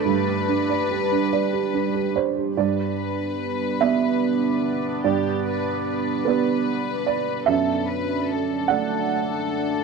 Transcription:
<<
  \new Staff \with { instrumentName = "Violin section" } { \time 6/8 \key g \major \tempo 4. = 49 b'2~ b'8 r8 | b'2. | g'8 b'8 b'2 | a'8 b'8 a'2 | }
  \new Staff \with { instrumentName = "Upright piano" } { \time 6/8 \key g \major << { r2 r8 c''8 | d''4. e''4. | d''4. b'4 d''8 | e''4. fis''4. | } \\ { g,16 g'16 d'16 d''16 g'16 d'16 d''16 g'16 d'16 g'16 d''16 g'16 | g,4. <b g' d''>4. | g,4. <b g' d''>4. | fis,4. <a a' d''>4. | } >> }
  \new Staff \with { instrumentName = "Ambient pad" } { \time 6/8 \key g \major <g d' d''>2. | <b d' d''>2.~ | <b d' d''>2. | <a d' d''>2. | }
>>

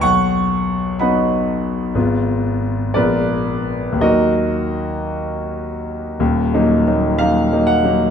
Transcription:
<<
  \new Staff \with { instrumentName = "Grand piano" } { \time 2/4 \key ees \minor \tempo 4 = 60 <fis'' des'''>4 <dis'' fis'' b''>8 r8 | r4 <bes' ces'' d''>4 | <ges' bes' ees''>4 r4 | r4 f''8 ges''8 | }
  \new Staff \with { instrumentName = "Grand piano" } { \time 2/4 \key ees \minor b,,4 <fis b dis'>4 | <aes,, aes ces' f'>4 <bes,, aes ces' f'>4 | <ees, ges bes ees'>2 | \tuplet 3/2 { <ees,, ees,>8 <ges bes ees'>8 <ges bes ees'>8 <ges bes ees'>8 <ges bes ees'>8 <ges bes ees'>8 } | }
>>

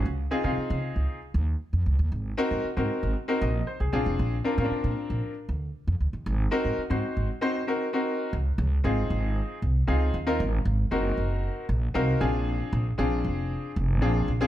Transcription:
<<
  \new Staff \with { instrumentName = "Grand piano" } { \time 4/4 \key des \major \tempo 4 = 116 << { r1 | r2 r8 ees''8 c''16 aes'8 r16 | r1 | r1 |
r1 | r2. f''8 aes''8 | r1 | } \\ { r8 <c' ees' f' aes'>16 <c' ees' f' aes'>4. r4. r16 | r8 <c' ees' ges' bes'>8 r16 <c' ees' ges' bes'>8. r16 <c' ees' ges' bes'>16 r4 <c' d' f' aes'>8~ | <c' d' f' aes'>16 r16 <c' d' f' bes'>16 <c' des' d' f' bes'>4. r4. r16 | r8 <c' ees' ges' bes'>8 r16 <c' ees' ges' c''>8. r16 <c' ees' ges' c''>16 r16 <c' ees' ges' bes'>16 r16 <c' ees' ges' bes'>8. |
r4 <c' ees' f' aes'>4. r8 <c' ees' f' aes'>8 r16 <c' ees' f' bes'>16 | r4 <c' ees' ges' bes'>4. r8 <c' ees' ges' bes'>8 <c' d' f' aes'>8~ | <c' d' f' aes'>8. r16 <c' d' f' aes'>4. r8 <c' d' f' aes'>8 r16 <c' d' f' aes'>16 | } >> }
  \new Staff \with { instrumentName = "Upright bass" } { \clef bass \time 4/4 \key des \major des,8 r16 des16 r16 des16 r16 des,16 r8 ees,8 r16 f,16 des,16 ees,16 | aes,,8 r16 aes,16 r16 aes,16 r16 aes,,16 r8 bes,,8 r16 c,16 bes,,16 f,,16 | bes,,8 r16 bes,16 r16 bes,16 r16 bes,,16 r8 d,8 r16 f,16 d,16 ees,16 | aes,,8 r16 aes,16 r16 aes,16 r16 aes,,16 r2 |
des,8 des,8 aes,,8 aes,,8. r16 c,8 des,8 ees,8 | aes,,8 aes,,8 ges,,8 ges,,8. r16 bes,,8 c,8 bes,,8~ | bes,,8 bes,,8 bes,,8 f,,8. r16 f,,8 bes,,8 bes,,8 | }
>>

